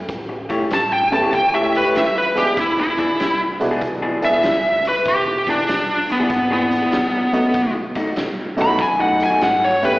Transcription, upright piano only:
1.12 A3 B3 C#4 E4 G4
2.35 G#3 B3 D4 E4 G#4
3.60 G#3 B3 D4 E4 F#4
4.22 G#3 B3 D4 E4 G#4
7.33 A3 B3 C#4 D#4 F#4
8.57 A3 B3 C#4 D#4 F#4
9.82 A3 B3 C#4 E4 G4

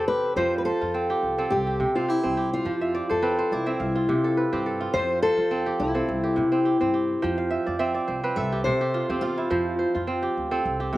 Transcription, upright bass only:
Already playing: E2
0.36 F2
0.82 F2
1.23 C2
1.52 C2
1.80 C3
2.24 C2
2.65 F2
3.11 F2
3.51 C2
3.80 C2
4.08 C3
4.53 G2
4.94 F2
5.38 F2
5.80 C2
6.08 C2
6.38 C3
6.81 G2
7.24 F2
7.67 F2
8.08 C2
8.37 C2
8.66 C3
9.09 E2
9.51 F2
9.95 F2
10.37 D2
10.65 C2
10.93 C3

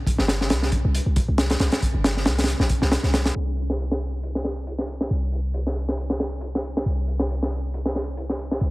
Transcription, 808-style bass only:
0.19 G1
0.50 C2
0.85 C2
1.06 C2
1.28 C2
1.60 C2
1.94 G1
2.25 C2
2.60 A#1
2.82 C2
3.04 C2
3.36 C2
5.11 C2
6.86 C2
8.61 C2

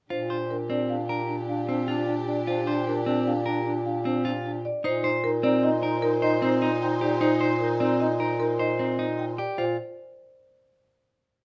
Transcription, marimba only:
0.10 C5
0.51 A#4
0.70 D5
0.90 F5
1.49 F5
1.69 C5
2.28 D5
2.48 C5
2.87 A#4
3.07 D5
3.27 F5
3.86 F5
4.06 C5
4.65 D5
4.85 C5
5.24 A#4
5.44 D5
5.63 D#5
6.02 A#4
6.22 D#5
6.43 C5
6.82 G5
7.01 D5
7.21 C5
7.60 A#4
7.80 D5
8.00 D#5
8.40 A#4
8.59 D#5
8.79 C5
9.19 G5
9.39 D5
9.58 C5

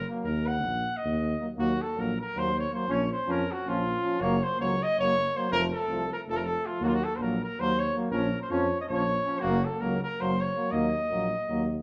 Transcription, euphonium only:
0.09 F#3
1.41 F#3
1.57 F#3
1.95 F#3
2.35 F#3
2.72 F#3
2.88 F3
3.27 F3
3.67 F3
4.03 F3
4.21 F#3
4.60 F#3
4.99 F#3
5.35 F#3
5.50 F3
5.90 F3
6.30 F3
6.66 F3
6.82 F#3
7.20 F#3
7.58 F#3
7.94 F#3
8.11 F3
8.50 F3
8.90 F3
9.26 F3
9.42 F#3
9.81 F#3
10.20 F#3
10.55 F#3
10.73 F#3
11.11 F#3
11.49 F#3

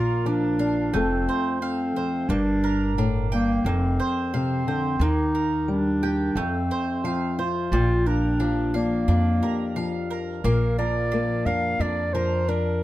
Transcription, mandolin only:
Already playing: A#3 A#4
0.26 D4
0.59 F5
0.94 A3
1.29 C5
1.62 F5
1.96 C5
2.30 A#3
2.64 A#4
2.98 D4
3.32 G5
3.66 A#3
4.00 C5
4.34 F5
4.68 C5
5.01 A#3
5.35 A#4
6.03 G5
6.37 A3
6.71 C5
7.05 F5
7.39 C5
7.73 G3
8.06 A#4
8.40 D4
8.74 F5
9.08 D4
9.43 A#4
9.76 F5
10.11 A#4
10.44 A#3 F5
10.79 A#4
11.12 D4
11.46 A#4
11.81 D4
12.15 A#4
12.49 D4

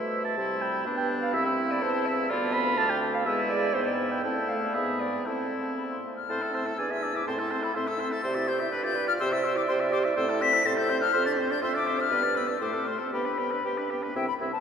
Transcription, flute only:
Already playing: C6
0.37 C6
0.62 B5
0.85 B5
1.82 A5
2.31 B5
2.78 D6
3.27 G#5
4.23 A5
4.74 B5
5.26 A5
5.77 B5
5.90 C6
6.16 F6
6.53 E6
6.91 E6
7.16 D6
7.28 C6
7.39 C6
7.64 B5
7.75 C6
7.87 E6
8.11 A6
8.49 G6
8.84 G6
9.08 F6
9.19 E6
9.31 E6
9.57 D6
9.68 C6
9.92 D6
10.17 E6
10.41 B6
10.66 A6
10.77 G6
11.01 F6
11.26 A6
11.51 G6
11.63 C6
11.76 D6
12.00 F6
12.37 E6
12.62 D6
12.87 C6
13.13 B5
14.16 G5
14.27 B5
14.52 A5

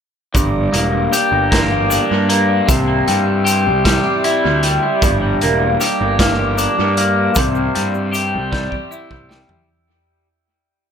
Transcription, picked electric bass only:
0.35 G1
0.74 E1
1.32 G1
2.11 G2
2.68 C2
3.09 G2
3.67 C2
4.45 D2
5.03 G1
5.44 E1
6.01 G1
6.79 G2
7.37 C2
7.77 G2
8.35 C2
9.11 C2

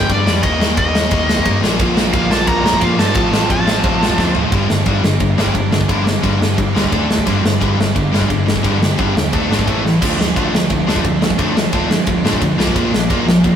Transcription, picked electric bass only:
0.10 G2
0.26 F2
0.43 D#2
0.60 D#2
0.77 D#2
1.11 D#2
1.45 G2
1.62 A#1
1.80 A#1
1.97 A#1
2.13 A#1
2.31 A#1
2.47 A#1
2.64 A#1
2.81 A#2
2.99 G2
3.16 A1
3.32 A1
3.50 A1
3.84 A1
4.18 D2
4.35 A1
4.52 G1
4.69 G1
4.86 G1
5.03 G1
5.20 G1
5.38 G1
5.55 G1
5.72 G1
5.89 G1
6.23 G1
6.41 G2
6.58 G1
6.75 D2
6.92 D2
7.09 D2
7.27 G1
7.43 G1
7.61 G1
7.77 G1
7.96 G1
8.12 G1
8.30 G1
8.46 G1
8.64 G1
8.99 G1
9.15 D#2
9.33 D2
9.49 G#1
9.68 A1
9.84 A1
10.02 D2
10.18 D2
10.36 D2
10.53 D2
10.70 D2
10.87 D2
11.05 D2
11.22 D2
11.39 D2
11.73 D2
11.90 D3
12.07 D2
12.24 A2
12.42 D2
12.58 A#1
12.76 A#1
12.92 A#1
13.10 A#1
13.27 A#1
13.44 A#1

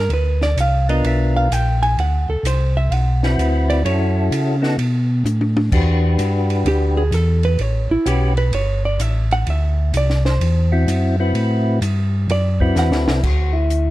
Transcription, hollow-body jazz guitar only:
Already playing: A#4
0.13 B4
0.43 D5
0.61 F5
0.90 D#5
1.07 E5
1.37 F5
1.53 G5
1.83 G#5
2.00 F#5
2.30 A4
2.47 C5
2.77 E5
2.94 F#5
3.70 D5
3.86 C#5
6.68 G4
6.97 G#4
7.14 A4
7.45 B4
7.61 C#5
7.91 E4
8.08 G4
8.38 B4
8.55 C#5
8.85 D5
9.01 E5
9.33 F#5
9.50 E5
9.97 D5
10.26 C5
12.32 D5
12.79 F#5

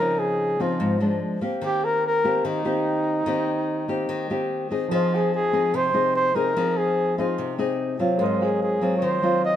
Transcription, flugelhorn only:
Already playing: A#4
0.19 G#4
0.61 F4
1.65 G4
1.85 A#4
2.06 A#4
2.46 D#4
4.94 F4
5.15 G#4
5.35 G#4
5.75 C5
6.16 C5
6.35 A#4
6.77 G#4
7.18 F4
8.22 F4
8.43 G#4
8.62 G#4
8.98 C#5
9.03 C5
9.45 D#5

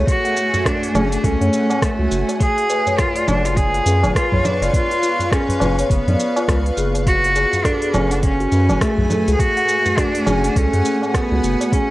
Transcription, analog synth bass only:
0.95 F#1
1.24 C#2
1.41 F#2
1.99 C#2
2.11 F#1
3.28 F#1
3.86 F#2
4.04 F#1
4.32 B1
4.61 F#1
5.61 F#1
5.90 F#1
6.07 F#2
6.48 C#2
6.77 F#1
7.94 F#1
8.52 F#2
8.70 F#1
8.99 B1
9.28 C#2
10.27 F#1
10.56 C#2
10.73 F#2
11.32 C#2
11.43 F#1

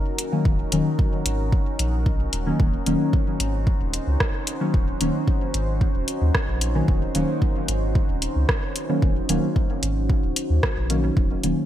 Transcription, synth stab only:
Already playing: D#3 F#3 A#3 C#4
0.32 D#3 F#3 A#3 C#4
0.72 D#3 F#3 A#3 C#4
2.46 D#3 F#3 A#3 C#4
2.86 D#3 F#3 A#3 C#4
4.61 D#3 F#3 A#3 C#4
5.01 D#3 F#3 A#3 C#4
6.75 D#3 F#3 A#3 C#4
7.15 D#3 F#3 A#3 C#4
8.89 D#3 F#3 A#3 C#4
9.29 D#3 F#3 A#3 C#4
10.90 D#3 F#3 A#3 C#4
11.43 D#3 F#3 A#3 C#4

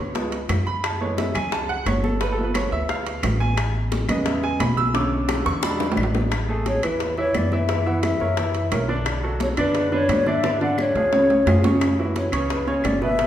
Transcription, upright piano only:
Already playing: D3 F#3 B3 C#5 C#6
0.15 F3 G#3 B3
0.67 B5
0.84 A5
1.00 E3 G#3 A3 B3 C#5
1.18 E5
1.35 G#5
1.52 A5
1.69 F#5
1.87 C#5
2.04 A4
2.21 B4
2.32 A4
2.37 F3 A3 B3
2.44 B4
2.55 C#5
2.72 E5
2.90 F5
3.40 G#5
4.08 C#3 G#3 B3 D#5
4.26 E5
4.44 G#5
4.61 B5
4.77 E6
4.94 D3 A3 C#4 D6
5.46 C#6
5.63 F#3 G#3 D4 B5
6.49 A3 G#4 A4
6.83 E3 E4 E5
7.18 E3 E4 E5
7.52 E3 E4 E5
7.69 E3 E4 E5
7.86 E3 E4 E5
8.20 A#3 A#4 C#5
8.37 E3 E4 E5
8.71 A#3 A#4 C#5
8.89 D3 D4 D5
9.23 F#3 F#4 A4
9.57 D3 D4 D5
9.92 D3 D4 B4
10.26 D3 D4 D5
10.44 D3 D4 D5
10.61 D3 D4 D5
10.95 F3 F4 G#4
11.13 C#3 C#4 C#5
11.47 F3 F4 G#4
11.64 C#3 C#4 C#5
11.98 E3 E4 F#4
12.32 C#3 C#4 C#5
12.67 C#3 C#4 C#5
13.02 B2 B3 B4
13.18 B2 B3 B4

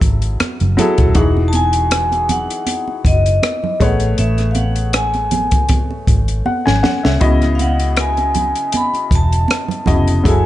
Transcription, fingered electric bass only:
0.02 G#1
0.41 muted fingered electric bass stroke
0.61 F#1
0.99 D#1
1.16 E1
3.05 F#1
3.81 A1
4.19 A1
6.08 G#1
6.47 muted fingered electric bass stroke
6.67 G#1
7.05 C2
7.22 C#2
9.12 E1
9.88 F1
10.25 F#1

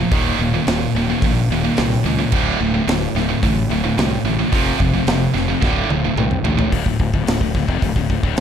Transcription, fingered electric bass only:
0.12 D#1
0.39 D#1
0.67 D#1
0.95 D#1
1.22 A#1
1.50 D#1
1.78 C2
2.04 C#2
2.32 D1
2.60 D1
2.87 D1
3.15 D1
3.43 A1
3.70 D1
3.98 C2
4.24 A1
4.53 F1
4.80 F1
5.07 F1
5.34 F1
5.62 D1
5.89 D1
6.16 C2
6.43 A1
6.72 D1
6.86 D1
7.00 D1
7.14 D1
7.27 D1
7.41 D1
7.55 D1
7.69 F1
7.82 D1
7.96 D1
8.10 D1
8.23 D1

